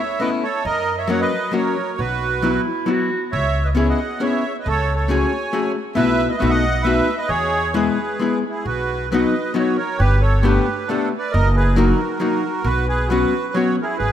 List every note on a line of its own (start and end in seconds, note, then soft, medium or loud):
0.00 0.19 C#5 medium
0.00 0.22 E5 medium
0.20 0.42 A3 medium
0.20 0.43 B3 soft
0.20 0.43 C#4 medium
0.20 0.43 E4 medium
0.20 0.30 B4 medium
0.20 0.30 D#5 loud
0.43 0.64 A4 medium
0.43 0.66 C#5 loud
0.65 1.22 F#2 loud
0.65 0.96 A#4 medium
0.65 0.99 D#5 loud
0.98 1.08 C#5 medium
0.98 1.09 E5 medium
1.08 1.30 F#3 medium
1.08 1.31 A#3 medium
1.08 1.31 C#4 medium
1.08 1.31 F#4 medium
1.08 1.20 C#5 medium
1.08 1.21 F#5 medium
1.21 1.52 B4 medium
1.21 1.55 D#5 loud
1.52 1.75 F#3 medium
1.52 1.75 A#3 medium
1.52 1.76 C#4 medium
1.52 1.76 F#4 medium
1.52 1.96 A#4 medium
1.52 2.00 C#5 medium
1.98 2.57 B1 loud
1.98 2.61 F#4 medium
1.98 2.61 B4 loud
2.42 2.65 F#3 medium
2.42 2.65 B3 medium
2.42 2.65 E4 medium
2.42 2.92 E4 medium
2.42 2.66 F#4 medium
2.86 3.09 F#3 medium
2.86 3.09 B3 medium
2.86 3.09 E4 soft
2.86 3.10 F#4 medium
2.90 3.22 F#4 loud
3.32 3.90 C#2 loud
3.32 3.63 C#5 medium
3.32 3.66 E5 loud
3.64 3.69 B4 medium
3.64 3.71 D#5 medium
3.75 3.98 B3 medium
3.75 3.98 C#4 medium
3.75 3.99 E4 medium
3.75 3.99 G#4 medium
3.75 3.87 C#5 medium
3.75 3.88 E5 medium
3.89 4.19 D#5 medium
3.89 4.23 F#5 medium
4.20 4.43 B3 medium
4.20 4.43 C#4 medium
4.20 4.43 E4 soft
4.20 4.43 G#4 medium
4.20 4.52 C#5 medium
4.24 4.57 E5 medium
4.59 4.67 B4 medium
4.59 4.68 D#5 medium
4.66 5.23 C#2 loud
4.66 4.93 A4 medium
4.66 4.95 C#5 loud
4.95 5.08 A4 medium
4.95 5.09 C#5 medium
5.08 5.31 A3 medium
5.08 5.31 C#4 medium
5.08 5.32 F#4 medium
5.08 5.32 G#4 medium
5.08 5.72 C#5 medium
5.08 5.72 G#5 medium
5.53 5.75 A3 medium
5.53 5.75 C#4 soft
5.53 5.75 F#4 medium
5.53 5.76 G#4 medium
5.95 6.25 B1 loud
5.95 6.31 A3 medium
5.95 6.32 B3 medium
5.95 6.32 E4 medium
5.95 6.32 F#4 medium
5.95 6.28 B4 medium
5.95 6.31 E5 loud
6.29 6.36 B4 medium
6.29 6.41 D#5 medium
6.38 6.63 A3 medium
6.38 6.63 B3 medium
6.38 6.63 D#4 medium
6.38 6.50 B4 medium
6.38 6.51 E5 medium
6.42 6.99 B1 loud
6.42 6.64 F#4 medium
6.50 6.82 D#5 medium
6.50 6.85 F#5 loud
6.82 7.07 A3 medium
6.82 7.07 B3 soft
6.82 7.08 D#4 medium
6.82 7.15 B4 medium
6.82 7.19 E5 loud
6.87 7.08 F#4 medium
7.18 7.28 B4 medium
7.18 7.30 D#5 medium
7.28 7.88 E2 loud
7.28 7.71 G#4 medium
7.28 7.75 C#5 loud
7.74 7.97 G#3 medium
7.74 7.97 B3 medium
7.74 7.97 E4 medium
7.74 8.39 G#4 medium
7.74 7.98 G#4 medium
7.74 8.39 B4 medium
8.19 8.42 G#3 medium
8.19 8.43 B3 soft
8.19 8.43 E4 soft
8.19 8.44 G#4 medium
8.49 8.63 E4 medium
8.49 8.66 G#4 medium
8.64 9.24 B1 medium
8.64 9.06 F#4 medium
8.64 9.09 B4 medium
9.10 9.33 F#3 medium
9.10 9.34 B3 medium
9.10 9.34 D#4 medium
9.10 9.34 F#4 medium
9.10 9.52 B4 medium
9.10 9.57 D#5 medium
9.54 9.77 F#3 medium
9.54 9.77 B3 medium
9.54 9.77 D#4 soft
9.54 9.78 F#4 medium
9.54 9.76 F#4 medium
9.59 9.77 C#5 medium
9.76 9.97 A#4 medium
9.76 10.00 C#5 medium
9.98 10.57 G1 loud
9.98 10.19 G4 medium
9.98 10.22 B4 loud
10.21 10.42 A4 medium
10.21 10.44 C#5 medium
10.42 10.66 A3 medium
10.42 10.66 B3 medium
10.42 10.66 D4 medium
10.42 10.84 G4 medium
10.42 10.67 G4 medium
10.42 10.89 B4 medium
10.88 11.11 A3 medium
10.88 11.11 B3 medium
10.88 11.09 D4 medium
10.88 11.12 D4 medium
10.88 11.12 G4 medium
10.88 11.09 A4 loud
11.18 11.32 B4 medium
11.18 11.33 D5 medium
11.31 11.91 F#1 loud
11.31 11.52 A#4 medium
11.31 11.55 D#5 loud
11.56 11.76 G#4 medium
11.56 11.76 B4 loud
11.76 11.99 F#3 medium
11.76 11.99 A#3 medium
11.76 11.99 D#4 medium
11.76 12.18 F#4 medium
11.76 12.00 F#4 medium
11.76 12.21 A#4 medium
12.20 12.43 F#3 medium
12.20 12.43 A#3 medium
12.20 12.43 D#4 medium
12.20 12.63 F#4 medium
12.20 12.44 F#4 medium
12.20 12.68 A#4 medium
12.64 13.23 B1 loud
12.64 12.86 F#4 medium
12.64 12.87 B4 loud
12.88 13.09 G#4 medium
12.88 13.07 B4 loud
13.08 13.33 F#3 medium
13.08 13.33 B3 medium
13.08 13.33 C#4 medium
13.08 13.51 F#4 medium
13.08 13.56 B4 loud
13.12 13.33 F#4 medium
13.53 13.77 F#3 medium
13.53 13.78 B3 medium
13.53 13.78 C#4 soft
13.53 13.75 F#4 medium
13.53 13.79 F#4 medium
13.53 13.76 C#5 medium
13.82 13.98 E4 medium
13.82 13.96 G#4 medium
13.82 13.85 A#4 medium
13.98 14.12 G#1 medium
13.98 14.12 G#4 medium
13.98 14.12 B4 loud